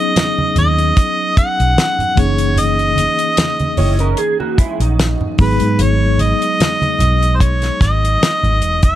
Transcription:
Already playing: tine electric piano F#3 B3 C#4 D#4 G#4, harmonica D#5
0.16 snare, closed hi-hat, muted conga, high conga
0.38 muted conga, high conga
0.56 fingered electric bass D#2, harmonica D#5, closed hi-hat, low conga
0.79 closed hi-hat
0.97 kick, closed hi-hat, muted conga
1.37 harmonica F#5, muted fingered electric bass stroke, kick, closed hi-hat
1.60 fingered electric bass B1, closed hi-hat
1.76 snare, closed hi-hat, muted conga
1.99 muted fingered electric bass stroke, closed hi-hat, low conga
2.15 fingered electric bass F#1, tine electric piano E3 A#3 C#4 D#4 G#4, kick, closed hi-hat
2.20 harmonica C#5
2.38 closed hi-hat
2.56 harmonica D#5, closed hi-hat, muted conga, low conga
2.79 closed hi-hat
2.96 closed hi-hat, high conga
3.19 closed hi-hat
3.37 snare, closed hi-hat, high conga
3.59 closed hi-hat, high conga
3.77 fingered electric bass F#1, clean electric guitar E4 C#5, open hi-hat, low conga
3.99 clean electric guitar C#4 A#4, closed hi-hat
4.17 clean electric guitar G#4, closed hi-hat
4.40 clean electric guitar A#3 F#4, muted conga
4.58 clean electric guitar G#3 E4, muted fingered electric bass stroke, kick, closed hi-hat
4.80 fingered electric bass A#1, clean electric guitar F#3 D#4, closed hi-hat
4.99 snare, closed hi-hat
5.21 muted conga, low conga
5.38 fingered electric bass G#1, tine electric piano F#3 G#3 B3 D#4 G#4, harmonica B4, kick, open hi-hat
5.60 fingered electric bass G#2, closed hi-hat
5.79 fingered electric bass G#1, harmonica C#5, closed hi-hat, muted conga, low conga
6.19 harmonica D#5, closed hi-hat, high conga
6.42 closed hi-hat
6.60 snare, closed hi-hat, muted conga, high conga
6.82 closed hi-hat, muted conga, high conga
6.99 fingered electric bass B1, closed hi-hat, low conga
7.23 closed hi-hat
7.36 harmonica C5
7.40 harmonica C#5, kick, closed hi-hat, muted conga
7.62 snare, closed hi-hat
7.81 fingered electric bass G#1, harmonica D#5, kick, snare, closed hi-hat
8.05 closed hi-hat
8.20 snare, closed hi-hat, muted conga
8.43 fingered electric bass G#1, closed hi-hat, low conga
8.61 fingered electric bass E1, closed hi-hat
8.83 harmonica E5, kick, closed hi-hat

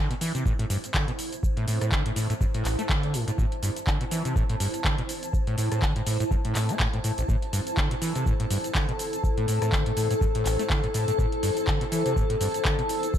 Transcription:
Already playing: ambient pad E4 C5
0.10 acid bass B2, closed hi-hat
0.21 acid bass E3, open hi-hat, cabasa
0.35 acid bass C3, closed hi-hat, cabasa
0.45 acid bass A2, kick, cabasa
0.59 acid bass A2, closed hi-hat
0.70 acid bass G2, open hi-hat, cabasa
0.84 closed hi-hat, cabasa
0.94 acid bass D3, ambient pad A5, kick, clap, cabasa
1.08 acid bass B2, closed hi-hat
1.19 open hi-hat, cabasa
1.33 closed hi-hat, cabasa
1.43 kick, cabasa
1.57 acid bass A2, closed hi-hat
1.68 acid bass A2, open hi-hat, cabasa
1.81 acid bass A2, cross-stick, closed hi-hat, cabasa
1.92 acid bass D3, kick, clap, cabasa
2.06 acid bass A2, closed hi-hat
2.16 acid bass A2, open hi-hat, cabasa
2.30 acid bass A2, closed hi-hat, cabasa
2.41 acid bass G2, kick, cabasa
2.54 acid bass A2, closed hi-hat
2.65 acid bass A1, clap, open hi-hat, cabasa
2.79 acid bass A3, closed hi-hat, cabasa
2.89 acid bass D3, kick, clap, cabasa
3.03 closed hi-hat
3.14 acid bass A2, open hi-hat, cabasa
3.28 acid bass A2, closed hi-hat, cabasa
3.38 acid bass A2, kick, cabasa
3.52 closed hi-hat
3.63 acid bass G2, open hi-hat, cabasa
3.76 closed hi-hat, cabasa
3.87 acid bass D3, kick, clap, cabasa
4.01 acid bass B2, closed hi-hat
4.11 acid bass E3, open hi-hat, cabasa
4.25 acid bass C3, closed hi-hat, cabasa
4.36 acid bass A2, kick, cabasa
4.50 acid bass A2, closed hi-hat
4.60 acid bass G2, open hi-hat, cabasa
4.74 closed hi-hat, cabasa
4.84 acid bass D3, kick, clap, cabasa
4.98 acid bass B2, closed hi-hat
5.09 open hi-hat, cabasa
5.23 closed hi-hat, cabasa
5.33 kick, cabasa
5.47 acid bass A2, closed hi-hat
5.58 acid bass A2, open hi-hat, cabasa
5.72 acid bass A2, cross-stick, closed hi-hat, cabasa
5.82 acid bass D3, kick, clap, cabasa
5.96 acid bass A2, closed hi-hat
6.07 acid bass A2, open hi-hat, cabasa
6.20 acid bass A2, closed hi-hat, cabasa
6.31 acid bass G2, kick, cabasa
6.45 acid bass A2, closed hi-hat
6.55 acid bass A2, clap, open hi-hat, cabasa
6.69 acid bass C4, closed hi-hat, cabasa
6.80 acid bass A2, kick, clap, cabasa
6.93 acid bass A2, closed hi-hat
7.04 acid bass A2, open hi-hat, cabasa
7.18 acid bass A1, closed hi-hat, cabasa
7.28 acid bass A2, ambient pad A4, kick, cabasa
7.42 closed hi-hat
7.53 acid bass G2, open hi-hat, cabasa
7.67 closed hi-hat, cabasa
7.77 acid bass D3, kick, clap, cabasa
7.91 acid bass B2, closed hi-hat
8.02 acid bass E3, open hi-hat, cabasa
8.15 acid bass C3, closed hi-hat, cabasa
8.26 acid bass A2, kick, cabasa
8.40 acid bass A2, closed hi-hat
8.50 acid bass G2, open hi-hat, cabasa
8.64 closed hi-hat, cabasa
8.75 acid bass D3, kick, clap, cabasa
8.89 acid bass B2, closed hi-hat
8.99 open hi-hat, cabasa
9.13 closed hi-hat, cabasa
9.24 kick, cabasa
9.37 acid bass A2, closed hi-hat
9.48 acid bass A2, open hi-hat, cabasa
9.62 acid bass A2, cross-stick, closed hi-hat, cabasa
9.72 acid bass D3, kick, clap, cabasa
9.86 acid bass A2, closed hi-hat
9.97 acid bass A2, open hi-hat, cabasa
10.11 acid bass A2, closed hi-hat, cabasa
10.21 acid bass G2, kick, cabasa
10.35 acid bass A2, closed hi-hat
10.46 acid bass A1, clap, open hi-hat, cabasa
10.59 acid bass A3, closed hi-hat, cabasa
10.70 acid bass D3, kick, clap, cabasa
10.84 acid bass A2, closed hi-hat
10.94 acid bass A2, open hi-hat, cabasa
11.08 acid bass A2, closed hi-hat, cabasa
11.19 acid bass A2, kick, cabasa
11.32 closed hi-hat
11.43 acid bass G2, open hi-hat, cabasa
11.57 closed hi-hat, cabasa
11.67 acid bass D3, kick, clap, cabasa
11.81 acid bass B2, closed hi-hat
11.92 acid bass E3, open hi-hat, cabasa
12.06 acid bass C3, closed hi-hat, cabasa
12.16 acid bass A2, kick, cabasa
12.30 acid bass A2, closed hi-hat
12.40 acid bass G2, open hi-hat, cabasa
12.54 closed hi-hat, cabasa
12.65 acid bass D3, kick, clap, cabasa
12.79 acid bass B2, closed hi-hat
12.89 open hi-hat, cabasa
13.03 closed hi-hat, cabasa
13.14 kick, cabasa

